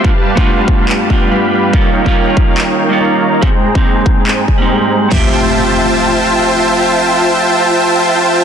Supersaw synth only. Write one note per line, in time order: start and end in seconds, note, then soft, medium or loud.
0.05 1.08 G3 loud
0.05 1.08 A5 loud
1.10 1.29 G3 medium
1.10 1.29 G4 medium
1.10 1.29 B4 medium
1.10 1.29 F5 medium
1.10 1.29 G5 medium
1.31 1.71 G3 loud
1.31 1.71 G4 medium
1.31 1.71 B4 medium
1.31 1.71 F5 medium
1.31 1.71 B5 loud
1.73 2.77 D#4 medium
2.79 2.98 D#4 medium
2.79 2.98 A#4 medium
2.79 2.98 C#5 medium
2.79 2.98 F5 medium
2.79 2.98 G5 medium
3.00 3.40 D#4 medium
3.00 3.40 A#4 medium
3.00 3.40 C#5 medium
3.00 3.40 F5 medium
3.00 3.40 A#5 loud
3.42 4.46 G#3 medium
3.42 4.46 G#4 medium
4.48 4.78 G#3 medium
4.48 4.78 G#4 medium
4.48 4.78 C5 medium
4.48 4.78 A#5 loud
4.81 5.09 G#3 medium
4.81 5.09 G#4 medium
4.81 5.09 C5 medium
4.81 5.09 G5 medium
4.81 5.09 A#5 loud
5.11 8.44 F4 medium
5.11 8.44 C5 medium
5.11 8.44 E5 medium
5.11 8.44 G5 medium
5.11 8.44 A5 medium